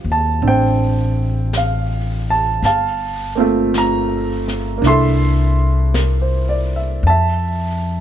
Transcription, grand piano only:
0.00 2.62 G3 soft
0.00 0.41 C4 soft
0.00 2.65 F4 soft
0.00 2.64 G4 soft
0.00 0.41 C5 soft
0.00 0.15 F5 medium
0.12 0.43 A5 medium
0.43 2.63 C4 soft
0.43 2.64 D4 soft
0.48 2.62 C5 soft
0.48 1.52 G5 medium
1.57 2.31 F5 medium
2.30 2.64 A5 medium
2.65 4.82 F5 medium
2.65 3.78 A5 medium
3.35 4.76 A#3 medium
3.35 4.84 C4 soft
3.35 4.85 F4 soft
3.40 4.85 A3 medium
3.78 4.82 A#5 medium
4.78 7.02 A#3 soft
4.78 7.03 D4 soft
4.86 7.06 E4 soft
4.86 7.07 A4 medium
4.86 6.75 E5 medium
4.86 6.66 C6 medium
5.94 6.46 A#4 soft
6.22 6.69 C5 soft
6.49 6.83 D5 soft
6.76 7.08 E5 soft
7.07 8.01 E5 medium
7.07 8.01 A5 medium

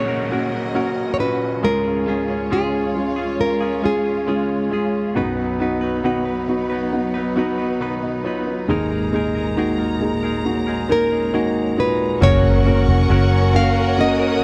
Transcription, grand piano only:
0.00 1.59 F#2 soft
0.00 1.59 C#3 soft
0.00 0.30 A#3 medium
0.00 0.31 C#4 medium
0.00 0.31 F#4 medium
0.00 0.29 G#4 medium
0.30 0.73 A#3 medium
0.30 0.73 C#4 medium
0.30 0.73 F#4 medium
0.74 1.17 A#3 medium
0.74 1.17 C#4 medium
0.74 1.17 F#4 medium
1.19 1.61 A#2 soft
1.19 1.61 C#4 soft
1.19 1.61 F#4 medium
1.63 5.12 C#2 soft
1.63 5.12 G#2 soft
1.63 2.05 G#3 medium
1.63 2.05 C#4 medium
1.63 2.06 F4 medium
2.07 2.49 G#3 medium
2.07 2.49 C#4 soft
2.07 2.49 G#4 medium
2.50 2.93 G#3 medium
2.50 2.93 C#4 soft
2.50 2.93 F4 medium
2.95 3.37 G#3 medium
2.95 3.37 C#4 soft
2.95 3.37 F4 medium
3.39 3.81 G#3 medium
3.39 3.82 C#4 soft
3.39 3.82 F4 medium
3.83 4.25 G#3 medium
3.83 4.25 C#4 medium
3.83 4.26 F4 medium
4.27 4.70 G#3 medium
4.27 4.70 C#4 medium
4.27 4.70 F4 medium
4.71 5.14 G#3 medium
4.71 5.14 C#4 soft
4.71 5.14 G#4 medium
5.15 8.65 B1 medium
5.15 8.65 F#2 medium
5.15 5.58 B3 medium
5.15 5.58 D#4 medium
5.15 5.58 F#4 medium
5.60 6.02 B3 medium
5.60 6.02 D#4 medium
5.60 6.02 F#4 medium
6.04 6.46 B3 medium
6.04 6.46 D#4 medium
6.04 6.47 F#4 medium
6.48 6.90 B3 medium
6.48 6.90 D#4 medium
6.48 6.91 F#4 medium
6.92 7.34 B3 medium
6.92 7.35 D#4 medium
6.92 7.35 F#4 medium
7.36 7.78 B3 medium
7.36 7.79 D#4 medium
7.36 7.79 F#4 medium
8.02 8.24 F#4 soft
8.02 8.24 D#5 medium
8.24 8.46 F4 soft
8.24 8.46 C#5 medium
8.47 8.67 D#4 soft
8.47 8.89 B4 soft
8.68 12.18 G#1 medium
8.68 12.18 D#2 medium
8.68 9.10 A#3 medium
8.68 9.11 D#4 medium
8.68 9.11 G#4 medium
9.12 9.55 A#3 medium
9.12 9.55 D#4 medium
9.12 9.55 G#4 medium
9.56 9.99 A#3 medium
9.56 9.99 D#4 medium
9.56 9.99 F#4 medium
10.01 10.43 A#3 medium
10.01 10.43 D#4 medium
10.01 10.43 G#4 medium
10.45 10.87 A#3 medium
10.45 10.87 D#4 medium
10.45 10.88 F#4 medium
10.89 11.31 A#3 medium
10.89 11.32 D#4 medium
10.89 11.32 A#4 medium
11.33 11.76 A#3 medium
11.33 11.76 D#4 medium
11.33 11.76 F#4 medium
11.77 12.20 A#2 medium
11.77 12.20 D#4 medium
11.77 12.20 F#4 medium
12.21 13.50 C#3 medium
12.21 12.63 A#3 medium
12.21 12.64 C#4 medium
12.21 12.64 F#4 medium
12.21 12.64 A#4 medium
12.65 13.08 A#3 medium
12.65 13.08 C#4 medium
12.65 13.08 F#4 medium
12.65 13.08 A#4 medium
13.09 13.52 A#3 medium
13.09 13.52 C#4 medium
13.09 13.52 F#4 medium
13.09 13.52 A#4 medium
13.54 13.96 A#3 medium
13.54 13.96 C#4 medium
13.54 13.96 F#4 medium
13.54 13.96 A#4 medium
13.98 14.40 A#3 medium
13.98 14.40 C#4 medium
13.98 14.40 F#4 medium
13.98 14.41 A#4 medium

